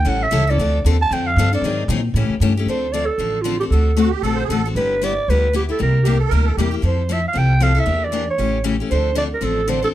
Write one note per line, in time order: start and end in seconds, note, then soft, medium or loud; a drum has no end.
0.00 0.10 G5 loud
0.05 0.31 A1 medium
0.05 0.24 E3 medium
0.05 0.25 G3 medium
0.05 0.25 C#4 medium
0.05 0.25 E4 medium
0.05 0.25 A4 medium
0.05 0.24 F#5 medium
0.23 0.51 E5 loud
0.31 0.57 C#2 loud
0.31 0.42 E3 medium
0.31 0.42 G3 medium
0.31 0.43 C#4 medium
0.31 0.43 E4 loud
0.31 0.43 A4 loud
0.47 0.59 C#4 medium
0.47 0.59 E4 medium
0.47 0.58 A4 medium
0.47 0.86 D5 loud
0.58 0.83 D2 medium
0.58 0.78 D3 medium
0.58 0.78 F3 medium
0.58 0.78 C4 medium
0.58 0.78 D4 medium
0.58 0.78 A4 medium
0.85 1.10 D#2 medium
0.85 0.96 D3 loud
0.85 0.96 F3 medium
0.85 0.96 C4 loud
0.85 0.96 D4 medium
0.85 0.96 A4 loud
1.02 1.15 A5 loud
1.11 1.36 F2 medium
1.11 1.30 D3 medium
1.11 1.30 F3 medium
1.11 1.30 C4 medium
1.11 1.30 D4 medium
1.11 1.30 A4 medium
1.11 1.28 G5 loud
1.27 1.52 F5 loud
1.36 1.61 G2 medium
1.36 1.48 D3 medium
1.36 1.48 F3 medium
1.36 1.48 C4 loud
1.36 1.49 D4 loud
1.36 1.48 A4 loud
1.53 1.64 C4 medium
1.53 1.63 D4 medium
1.53 1.63 A4 medium
1.53 1.88 D5 loud
1.61 1.87 G#2 medium
1.61 1.82 D#3 medium
1.61 1.82 F#3 medium
1.61 1.82 C4 medium
1.61 1.82 D#4 medium
1.65 1.82 G#4 medium
1.88 2.13 A#2 loud
1.88 1.99 D#3 medium
1.88 2.00 F#3 loud
1.88 2.00 C4 medium
1.88 2.00 D#4 medium
1.88 2.00 G#4 loud
2.14 2.28 A2 medium
2.14 2.34 C#3 medium
2.14 2.34 E3 medium
2.14 2.34 A3 medium
2.14 2.34 C#4 medium
2.14 2.34 G4 medium
2.29 muted upright bass stroke soft
2.40 2.65 G2 medium
2.40 2.51 C#3 medium
2.40 2.52 E3 medium
2.40 2.52 A3 medium
2.40 2.52 C#4 loud
2.40 2.52 G4 loud
2.57 2.68 A3 medium
2.57 2.68 C#4 medium
2.57 2.67 G4 medium
2.66 3.08 D2 medium
2.66 2.86 D3 medium
2.66 2.86 F3 medium
2.66 2.86 C4 medium
2.66 2.86 D4 medium
2.66 2.87 A4 medium
2.66 2.94 C5 medium
2.93 3.03 D3 medium
2.93 3.04 F3 medium
2.93 3.04 C4 medium
2.93 3.04 D4 medium
2.93 3.04 A4 medium
2.93 3.07 D5 loud
3.06 3.43 A4 medium
3.18 3.60 A1 medium
3.18 3.37 D3 medium
3.18 3.37 F3 medium
3.18 3.37 C4 medium
3.18 3.38 D4 medium
3.18 3.38 A4 medium
3.42 3.55 D3 medium
3.42 3.55 F3 medium
3.42 3.55 C4 medium
3.42 3.56 D4 medium
3.42 3.58 F4 medium
3.42 3.56 A4 medium
3.59 3.71 C4 soft
3.59 3.71 D4 medium
3.59 3.65 G4 medium
3.59 3.71 A4 medium
3.70 4.12 D2 medium
3.70 3.90 D3 medium
3.70 3.90 A3 medium
3.70 3.90 C4 medium
3.70 3.91 F#4 medium
3.70 4.09 A4 medium
3.70 3.91 A4 medium
3.97 4.07 D3 medium
3.97 4.07 A3 medium
3.97 4.08 C4 medium
3.97 4.11 F#4 medium
3.97 4.08 F#4 medium
3.97 4.08 A4 medium
4.10 4.22 G4 medium
4.22 4.45 A#1 medium
4.22 4.42 D3 medium
4.22 4.42 A3 medium
4.22 4.42 C4 medium
4.22 4.42 F#4 medium
4.22 4.38 A4 medium
4.22 4.42 A4 medium
4.36 4.44 C5 medium
4.43 4.48 G#4 medium
4.48 4.71 A1 medium
4.48 4.60 D3 medium
4.48 4.60 A3 medium
4.48 4.60 C4 medium
4.48 4.61 F#4 medium
4.48 4.67 A4 medium
4.48 4.61 A4 medium
4.65 4.76 C4 soft
4.65 4.76 F#4 medium
4.65 4.75 A4 medium
4.75 5.17 G1 medium
4.75 4.94 G3 medium
4.75 4.94 B3 medium
4.75 4.94 E4 medium
4.75 4.95 G4 medium
4.75 5.05 B4 medium
5.02 5.12 G3 medium
5.02 5.12 B3 medium
5.02 5.13 E4 medium
5.02 5.13 G4 medium
5.02 5.31 D5 loud
5.28 5.69 D2 medium
5.28 5.47 G3 medium
5.28 5.47 B3 medium
5.28 5.47 E4 medium
5.28 5.47 G4 medium
5.28 5.54 B4 medium
5.53 5.64 G3 medium
5.53 5.64 B3 medium
5.53 5.64 E4 medium
5.53 5.64 G4 medium
5.53 5.62 G4 medium
5.69 5.79 B3 soft
5.69 5.79 E4 medium
5.69 5.79 G4 medium
5.69 5.80 A4 medium
5.79 6.21 C2 medium
5.79 5.97 C3 medium
5.79 5.97 G3 medium
5.79 5.98 A#3 medium
5.79 5.98 E4 medium
5.79 5.98 G4 medium
5.79 6.19 A#4 medium
6.04 6.15 C3 medium
6.04 6.16 G3 medium
6.04 6.16 A#3 medium
6.04 6.16 E4 medium
6.04 6.18 G4 medium
6.04 6.16 G4 medium
6.18 6.31 A4 medium
6.29 6.53 D2 medium
6.29 6.50 C3 medium
6.29 6.50 G3 medium
6.29 6.50 A#3 medium
6.29 6.50 E4 medium
6.29 6.45 A#4 loud
6.33 6.51 G4 medium
6.45 6.56 A4 medium
6.56 6.79 E2 medium
6.56 6.68 C3 medium
6.56 6.68 G3 medium
6.56 6.69 A#3 medium
6.56 6.69 E4 medium
6.56 6.75 G4 medium
6.60 6.69 G4 medium
6.71 6.83 A#3 soft
6.71 6.83 E4 medium
6.71 6.82 G4 soft
6.82 7.24 F2 medium
6.82 7.01 F3 medium
6.82 7.01 C4 medium
6.82 7.02 E4 medium
6.82 7.02 A4 medium
6.82 7.14 C5 medium
7.09 7.19 F3 medium
7.09 7.20 C4 medium
7.09 7.20 E4 medium
7.09 7.20 A4 medium
7.09 7.26 E5 medium
7.28 7.39 F5 medium
7.33 7.77 C2 medium
7.33 7.53 F3 medium
7.33 7.53 C4 medium
7.33 7.54 E4 medium
7.33 7.54 A4 medium
7.38 7.64 G5 loud
7.60 7.71 F3 medium
7.60 7.71 C4 medium
7.60 7.72 E4 medium
7.60 7.72 A4 medium
7.60 7.81 F5 medium
7.75 7.85 C4 soft
7.75 7.86 E4 soft
7.75 7.86 A4 medium
7.80 8.06 E5 medium
7.86 8.28 E2 medium
7.86 8.05 E3 medium
7.86 8.05 A#3 medium
7.86 8.05 D4 medium
7.86 8.05 G4 medium
8.04 8.29 D5 medium
8.12 8.23 E3 medium
8.12 8.23 A#3 medium
8.12 8.23 D4 medium
8.12 8.24 G4 medium
8.31 8.64 C#5 medium
8.38 8.80 A1 medium
8.38 8.57 C#3 medium
8.38 8.57 E3 medium
8.38 8.57 A3 medium
8.38 8.58 C#4 medium
8.38 8.58 G4 medium
8.64 8.75 C#3 medium
8.64 8.75 E3 medium
8.64 8.75 A3 medium
8.64 8.75 C#4 medium
8.64 8.75 G4 medium
8.80 8.91 A3 soft
8.80 8.91 C#4 soft
8.80 8.91 G4 medium
8.91 9.32 D2 medium
8.91 9.09 D3 medium
8.91 9.10 F3 medium
8.91 9.10 C4 medium
8.91 9.10 D4 medium
8.91 9.10 A4 medium
8.91 9.15 C5 medium
9.15 9.27 D3 medium
9.15 9.26 F3 medium
9.15 9.27 C4 medium
9.15 9.27 D4 medium
9.15 9.27 A4 medium
9.15 9.24 D5 loud
9.34 9.45 A#4 medium
9.41 9.83 A1 medium
9.41 9.60 D3 medium
9.41 9.60 F3 medium
9.41 9.61 C4 medium
9.41 9.61 D4 medium
9.41 9.61 A4 medium
9.41 9.71 A4 medium
9.67 9.79 D3 medium
9.67 9.78 F3 medium
9.67 9.79 C4 medium
9.67 9.79 D4 medium
9.67 9.79 A4 medium
9.67 9.84 C5 medium
9.82 9.94 C4 soft
9.82 9.94 D4 medium
9.82 9.94 A4 medium
9.82 9.89 A4 medium